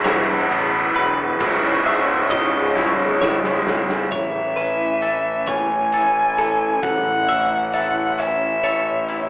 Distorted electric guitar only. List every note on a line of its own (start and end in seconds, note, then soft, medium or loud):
0.00 1.38 E2 medium
0.00 1.38 B2 medium
0.00 1.41 E3 medium
0.00 1.39 F#3 medium
0.00 1.39 B3 medium
0.00 1.42 E4 medium
1.40 4.09 C#2 medium
1.40 4.09 G#2 medium
1.40 4.10 C#3 medium
1.40 4.10 G#3 medium
1.40 4.10 E4 medium